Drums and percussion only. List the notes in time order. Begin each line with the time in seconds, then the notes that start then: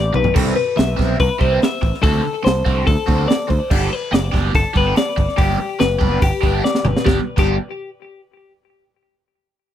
0.14 mid tom
0.24 floor tom
0.36 kick, crash
0.78 snare, open hi-hat
0.99 kick, snare
1.20 kick, open hi-hat
1.41 kick
1.62 snare, open hi-hat
1.83 kick
1.94 snare
2.03 kick, open hi-hat
2.46 snare, open hi-hat
2.66 kick
2.87 kick, open hi-hat
3.08 kick
3.30 snare, open hi-hat
3.50 kick
3.71 kick, crash
4.13 snare, open hi-hat
4.34 kick, snare
4.55 kick, open hi-hat
4.76 kick
4.96 snare, open hi-hat
5.18 kick
5.29 snare
5.38 kick, open hi-hat
5.79 snare, open hi-hat
6.01 kick
6.22 kick, open hi-hat
6.43 kick
6.65 snare
6.75 snare
6.85 mid tom
6.97 snare
7.07 kick, snare
7.38 kick, crash